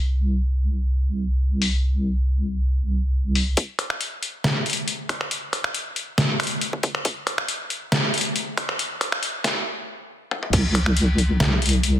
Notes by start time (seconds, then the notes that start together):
Already playing: C2
1.62 open hi-hat
3.35 open hi-hat
3.57 kick, closed hi-hat
3.79 finger snap, closed hi-hat
3.90 finger snap
4.01 closed hi-hat
4.23 closed hi-hat
4.44 snare, closed hi-hat
4.66 closed hi-hat
4.70 closed hi-hat
4.73 closed hi-hat
4.77 closed hi-hat
4.88 closed hi-hat
5.09 finger snap, kick, closed hi-hat
5.21 finger snap
5.31 closed hi-hat
5.53 finger snap, closed hi-hat
5.64 finger snap
5.74 closed hi-hat
5.96 closed hi-hat
6.18 snare, closed hi-hat
6.40 finger snap, closed hi-hat
6.43 closed hi-hat
6.47 closed hi-hat
6.51 closed hi-hat
6.61 closed hi-hat
6.73 kick
6.83 kick, closed hi-hat
6.95 finger snap
7.05 kick, closed hi-hat
7.27 finger snap, closed hi-hat
7.38 finger snap
7.48 closed hi-hat
7.70 closed hi-hat
7.92 snare, closed hi-hat
8.14 closed hi-hat
8.18 closed hi-hat
8.21 closed hi-hat
8.25 closed hi-hat
8.36 closed hi-hat
8.57 finger snap, kick, closed hi-hat
8.69 finger snap
8.79 closed hi-hat
9.01 finger snap, closed hi-hat
9.12 finger snap
9.23 closed hi-hat
9.44 snare, closed hi-hat
10.31 high tom
10.43 mid tom
10.53 C2, kick, closed hi-hat, crash
10.75 finger snap, closed hi-hat
10.86 finger snap
10.97 closed hi-hat
11.18 closed hi-hat
11.40 C2, snare, closed hi-hat
11.62 closed hi-hat
11.66 closed hi-hat
11.69 closed hi-hat
11.73 closed hi-hat
11.83 closed hi-hat